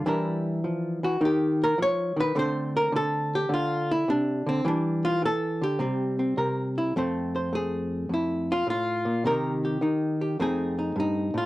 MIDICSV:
0, 0, Header, 1, 2, 480
1, 0, Start_track
1, 0, Key_signature, -1, "minor"
1, 0, Tempo, 573614
1, 48, Time_signature, 4, 2, 24, 8
1, 5809, Key_signature, -1, "major"
1, 9587, End_track
2, 0, Start_track
2, 0, Title_t, "Hollow-body jazz guitar"
2, 0, Program_c, 0, 26
2, 49, Note_on_c, 0, 52, 78
2, 51, Note_on_c, 0, 55, 53
2, 57, Note_on_c, 0, 62, 53
2, 63, Note_on_c, 0, 64, 56
2, 69, Note_on_c, 0, 70, 53
2, 530, Note_off_c, 0, 55, 0
2, 537, Note_on_c, 0, 53, 55
2, 854, Note_off_c, 0, 52, 0
2, 861, Note_off_c, 0, 53, 0
2, 864, Note_on_c, 0, 52, 66
2, 865, Note_off_c, 0, 64, 0
2, 874, Note_on_c, 0, 66, 76
2, 995, Note_off_c, 0, 62, 0
2, 1000, Note_off_c, 0, 70, 0
2, 1007, Note_off_c, 0, 52, 0
2, 1011, Note_on_c, 0, 51, 75
2, 1013, Note_on_c, 0, 63, 50
2, 1017, Note_off_c, 0, 66, 0
2, 1047, Note_on_c, 0, 67, 79
2, 1357, Note_off_c, 0, 67, 0
2, 1369, Note_on_c, 0, 70, 94
2, 1487, Note_off_c, 0, 51, 0
2, 1491, Note_on_c, 0, 53, 64
2, 1504, Note_off_c, 0, 70, 0
2, 1527, Note_on_c, 0, 73, 109
2, 1808, Note_off_c, 0, 53, 0
2, 1812, Note_on_c, 0, 51, 69
2, 1837, Note_off_c, 0, 73, 0
2, 1845, Note_on_c, 0, 71, 98
2, 1953, Note_off_c, 0, 63, 0
2, 1966, Note_off_c, 0, 51, 0
2, 1968, Note_on_c, 0, 50, 82
2, 1974, Note_on_c, 0, 57, 53
2, 1980, Note_on_c, 0, 60, 54
2, 1983, Note_off_c, 0, 71, 0
2, 2001, Note_on_c, 0, 72, 97
2, 2311, Note_off_c, 0, 72, 0
2, 2314, Note_on_c, 0, 70, 90
2, 2436, Note_off_c, 0, 50, 0
2, 2446, Note_on_c, 0, 50, 71
2, 2458, Note_off_c, 0, 70, 0
2, 2480, Note_on_c, 0, 69, 98
2, 2793, Note_off_c, 0, 69, 0
2, 2805, Note_on_c, 0, 67, 87
2, 2911, Note_off_c, 0, 50, 0
2, 2921, Note_on_c, 0, 50, 72
2, 2943, Note_off_c, 0, 67, 0
2, 2959, Note_on_c, 0, 65, 79
2, 3273, Note_off_c, 0, 65, 0
2, 3276, Note_on_c, 0, 64, 91
2, 3405, Note_off_c, 0, 50, 0
2, 3415, Note_off_c, 0, 60, 0
2, 3416, Note_on_c, 0, 48, 66
2, 3418, Note_off_c, 0, 64, 0
2, 3430, Note_on_c, 0, 62, 81
2, 3733, Note_off_c, 0, 48, 0
2, 3736, Note_on_c, 0, 50, 72
2, 3749, Note_off_c, 0, 62, 0
2, 3755, Note_on_c, 0, 60, 78
2, 3874, Note_off_c, 0, 57, 0
2, 3886, Note_off_c, 0, 50, 0
2, 3889, Note_on_c, 0, 52, 91
2, 3896, Note_on_c, 0, 55, 54
2, 3898, Note_off_c, 0, 60, 0
2, 3914, Note_on_c, 0, 62, 76
2, 4223, Note_on_c, 0, 65, 89
2, 4231, Note_off_c, 0, 62, 0
2, 4358, Note_off_c, 0, 52, 0
2, 4365, Note_off_c, 0, 55, 0
2, 4368, Note_on_c, 0, 52, 54
2, 4372, Note_off_c, 0, 65, 0
2, 4397, Note_on_c, 0, 69, 106
2, 4697, Note_off_c, 0, 52, 0
2, 4699, Note_on_c, 0, 50, 64
2, 4712, Note_off_c, 0, 69, 0
2, 4715, Note_on_c, 0, 67, 81
2, 4845, Note_on_c, 0, 48, 82
2, 4850, Note_off_c, 0, 50, 0
2, 4851, Note_on_c, 0, 55, 46
2, 4859, Note_on_c, 0, 60, 51
2, 5171, Note_off_c, 0, 60, 0
2, 5181, Note_on_c, 0, 60, 44
2, 5323, Note_off_c, 0, 48, 0
2, 5333, Note_on_c, 0, 48, 72
2, 5337, Note_on_c, 0, 70, 54
2, 5338, Note_off_c, 0, 67, 0
2, 5672, Note_on_c, 0, 64, 58
2, 5792, Note_off_c, 0, 55, 0
2, 5792, Note_off_c, 0, 60, 0
2, 5793, Note_off_c, 0, 48, 0
2, 5795, Note_off_c, 0, 70, 0
2, 5798, Note_off_c, 0, 64, 0
2, 5825, Note_on_c, 0, 41, 75
2, 5831, Note_on_c, 0, 57, 59
2, 5838, Note_on_c, 0, 60, 54
2, 5846, Note_on_c, 0, 72, 50
2, 6152, Note_off_c, 0, 72, 0
2, 6156, Note_on_c, 0, 72, 51
2, 6288, Note_off_c, 0, 57, 0
2, 6298, Note_on_c, 0, 57, 53
2, 6320, Note_on_c, 0, 68, 79
2, 6763, Note_off_c, 0, 41, 0
2, 6773, Note_on_c, 0, 41, 60
2, 6784, Note_off_c, 0, 68, 0
2, 6809, Note_on_c, 0, 64, 60
2, 7106, Note_off_c, 0, 72, 0
2, 7117, Note_off_c, 0, 64, 0
2, 7128, Note_on_c, 0, 65, 90
2, 7250, Note_off_c, 0, 41, 0
2, 7253, Note_on_c, 0, 45, 68
2, 7264, Note_off_c, 0, 65, 0
2, 7281, Note_on_c, 0, 65, 82
2, 7575, Note_on_c, 0, 46, 63
2, 7579, Note_off_c, 0, 45, 0
2, 7714, Note_off_c, 0, 57, 0
2, 7724, Note_off_c, 0, 60, 0
2, 7727, Note_off_c, 0, 46, 0
2, 7734, Note_on_c, 0, 48, 73
2, 7744, Note_off_c, 0, 65, 0
2, 7744, Note_on_c, 0, 51, 59
2, 7749, Note_on_c, 0, 63, 51
2, 7754, Note_on_c, 0, 67, 56
2, 7755, Note_on_c, 0, 70, 85
2, 8063, Note_off_c, 0, 67, 0
2, 8069, Note_off_c, 0, 70, 0
2, 8073, Note_on_c, 0, 67, 51
2, 8201, Note_off_c, 0, 51, 0
2, 8209, Note_off_c, 0, 63, 0
2, 8210, Note_off_c, 0, 48, 0
2, 8211, Note_on_c, 0, 51, 59
2, 8219, Note_on_c, 0, 63, 45
2, 8537, Note_off_c, 0, 67, 0
2, 8547, Note_on_c, 0, 67, 53
2, 8674, Note_off_c, 0, 63, 0
2, 8674, Note_off_c, 0, 67, 0
2, 8688, Note_off_c, 0, 51, 0
2, 8699, Note_on_c, 0, 41, 74
2, 8702, Note_on_c, 0, 57, 53
2, 8708, Note_on_c, 0, 60, 48
2, 8713, Note_on_c, 0, 63, 48
2, 8720, Note_on_c, 0, 68, 73
2, 9016, Note_off_c, 0, 63, 0
2, 9026, Note_on_c, 0, 63, 48
2, 9165, Note_off_c, 0, 41, 0
2, 9169, Note_on_c, 0, 43, 68
2, 9171, Note_off_c, 0, 63, 0
2, 9182, Note_off_c, 0, 68, 0
2, 9203, Note_on_c, 0, 63, 77
2, 9486, Note_off_c, 0, 43, 0
2, 9489, Note_on_c, 0, 45, 70
2, 9512, Note_off_c, 0, 63, 0
2, 9520, Note_on_c, 0, 65, 80
2, 9587, Note_off_c, 0, 45, 0
2, 9587, Note_off_c, 0, 57, 0
2, 9587, Note_off_c, 0, 60, 0
2, 9587, Note_off_c, 0, 65, 0
2, 9587, End_track
0, 0, End_of_file